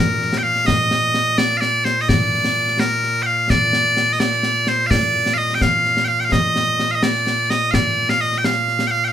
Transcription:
0.00 9.13 A#2 medium
0.00 0.38 A#4 medium
0.22 snare soft
0.33 snare medium
0.38 0.43 G5 medium
0.43 0.67 F5 loud
0.56 snare soft
0.67 1.38 D#5 loud
0.67 concert bass drum medium
0.67 snare medium
0.91 snare medium
1.14 snare medium
1.38 1.57 D5 loud
1.38 snare loud
1.50 snare soft
1.57 1.85 D5 loud
1.57 1.61 F5 loud
1.62 snare medium
1.85 2.01 C5 medium
1.85 snare medium
2.01 2.09 D#5 medium
2.09 2.80 D5 loud
2.09 concert bass drum medium
2.09 snare medium
2.45 snare medium
2.68 snare soft
2.79 3.23 A#4 medium
2.79 snare loud
3.03 snare soft
3.23 3.50 F5 medium
3.23 3.26 G5 medium
3.50 4.13 D5 loud
3.50 concert bass drum medium
3.50 snare medium
3.73 snare medium
3.97 snare medium
4.13 4.20 D#5 medium
4.20 4.68 D5 medium
4.20 snare loud
4.32 snare soft
4.43 snare medium
4.67 4.87 C5 medium
4.67 snare medium
4.87 4.91 F5 loud
4.91 5.34 D5 loud
4.91 concert bass drum medium
4.91 snare medium
5.26 snare medium
5.34 5.55 D#5 loud
5.34 5.38 F5 loud
5.50 snare soft
5.55 5.62 G5 medium
5.61 6.05 F5 medium
5.61 concert bass drum medium
5.61 snare medium
5.85 snare soft
5.97 snare medium
6.05 6.20 F5 medium
6.05 6.08 G5 medium
6.20 6.25 G5 medium
6.25 6.32 F5 medium
6.32 6.91 D#5 loud
6.32 concert bass drum medium
6.32 snare medium
6.56 snare medium
6.79 snare medium
6.91 7.03 D#5 medium
6.91 6.95 F5 medium
7.03 7.50 D5 medium
7.03 snare loud
7.15 snare soft
7.27 snare medium
7.50 7.71 D#5 medium
7.50 snare medium
7.71 8.10 D5 loud
7.71 7.74 F5 loud
7.71 concert bass drum medium
7.71 snare loud
8.09 8.21 F5 loud
8.09 snare medium
8.21 8.38 D#5 medium
8.33 snare soft
8.38 8.45 G5 medium
8.44 8.87 F5 medium
8.44 snare medium
8.68 snare soft
8.79 snare medium
8.87 9.05 F5 loud
8.87 8.91 G5 loud
9.05 9.13 F5 medium
9.05 9.08 G5 medium

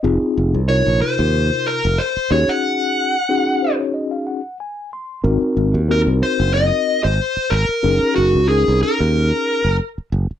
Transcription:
0.03 0.20 F1 medium
0.03 0.59 C4 medium
0.03 0.59 D#4 medium
0.03 0.59 F4 medium
0.03 0.59 G#4 medium
0.22 muted fingered electric bass stroke soft
0.37 0.53 F1 medium
0.54 0.85 C2 medium
0.68 1.80 C3 medium
0.68 1.80 D#4 medium
0.68 1.80 F4 medium
0.68 1.79 A#4 medium
0.68 1.01 C#5 medium
0.87 1.00 A#1 medium
1.02 1.68 C5 medium
1.02 muted fingered electric bass stroke soft
1.19 1.49 D#2 medium
1.67 2.00 A#4 medium
1.85 1.98 F1 medium
1.98 2.29 C5 medium
2.17 muted fingered electric bass stroke soft
2.31 2.47 D#2 medium
2.31 3.15 C#4 medium
2.31 3.15 D#4 medium
2.31 3.15 F#4 medium
2.31 3.15 G#4 medium
2.31 2.50 C#5 medium
2.48 3.75 F#5 medium
2.48 muted fingered electric bass stroke soft
3.29 4.40 C#4 medium
3.29 4.40 D#4 medium
3.29 4.40 F#4 medium
3.29 4.40 G#4 medium
3.62 3.78 C5 medium
3.79 3.93 C#5 medium
3.94 4.10 D#5 medium
4.11 4.25 F5 medium
4.27 4.57 F#5 medium
4.60 4.90 G#5 medium
4.93 5.23 C6 medium
5.24 5.41 G#1 medium
5.24 5.80 C4 medium
5.24 5.80 D#4 medium
5.24 5.80 F#4 medium
5.24 5.80 A#4 medium
5.41 muted fingered electric bass stroke soft
5.57 5.73 G#1 medium
5.74 6.05 D#2 medium
5.88 7.00 C4 medium
5.88 7.00 D#4 medium
5.88 7.00 F#4 medium
5.88 7.00 A#4 medium
5.88 6.00 A#4 medium
6.07 6.21 C2 medium
6.22 6.53 C5 medium
6.22 muted fingered electric bass stroke soft
6.40 6.70 F#1 medium
6.54 7.01 D#5 medium
7.04 7.19 G#1 medium
7.04 7.53 C5 medium
7.37 muted fingered electric bass stroke soft
7.50 7.68 G#1 medium
7.50 8.15 A#4 medium
7.83 8.01 F#1 medium
7.83 8.39 C#4 medium
7.83 8.40 D#4 medium
7.83 8.40 G#4 medium
7.83 8.40 A#4 medium
8.16 8.34 F#1 medium
8.16 8.48 F#4 medium
8.35 8.66 C#2 medium
8.48 9.60 C#4 medium
8.48 9.60 D#4 medium
8.48 8.79 G#4 medium
8.48 9.61 G#4 medium
8.48 9.60 A#4 medium
8.68 8.82 C2 medium
8.83 9.76 A#4 medium
8.83 muted fingered electric bass stroke soft
9.00 9.31 D#2 medium
9.65 9.79 F#1 medium
9.98 muted fingered electric bass stroke soft
10.12 10.29 F#1 medium
10.31 muted fingered electric bass stroke soft

